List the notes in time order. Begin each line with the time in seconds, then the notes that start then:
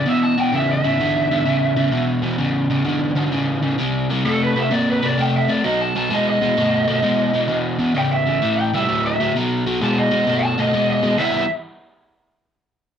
0.06 E2 B2 E5
0.23 A5
0.38 E2 B2 G5
0.52 E2 C#3 E5
0.72 E5
0.84 E2 C#3
1.00 E2 D3
1.31 E2 D3
1.46 E2 C#3
1.76 E2 C#3
1.91 E2 B2
2.22 E2 B2
2.38 E2 C#3
2.70 E2 C#3
2.85 E2 D3
3.16 E2 D3
3.32 E2 C#3
3.63 E2 C#3
3.78 C3 G3
4.09 C3 G3
4.25 C3 A3 A4
4.43 B4
4.56 C3 A3 E5
4.71 C3 A#3 D5
4.90 B4
5.02 C3 A#3 D5
5.18 C3 A3 G5
5.36 E5
5.49 C3 A3 D5
5.64 B2 F#3 D#5
5.81 A5
5.96 B2 F#3 A5
6.11 B2 G#3 D#5
6.28 D#5
6.41 B2 G#3
6.57 B2 A3
6.88 B2 A3
7.03 B2 G#3
7.34 B2 G#3
7.48 E2 B2
7.79 E2 B2
7.95 E2 C#3 G5
8.12 E5
8.26 E2 C#3
8.42 A2 E3
8.59 G5
8.74 A2 G3 E5
8.89 A2 F#3
9.06 E5
9.20 A2 F#3
9.35 B2 F#3
9.66 B2 F#3
9.81 B2 G#3 A5
9.98 D#5
10.11 B2 G#3
10.28 B2 A3
10.43 A5
10.58 B2 A3 D#5
10.73 B2 G#3
10.90 D#5
11.03 B2 G#3
11.18 E3 G3 B3 E4 E5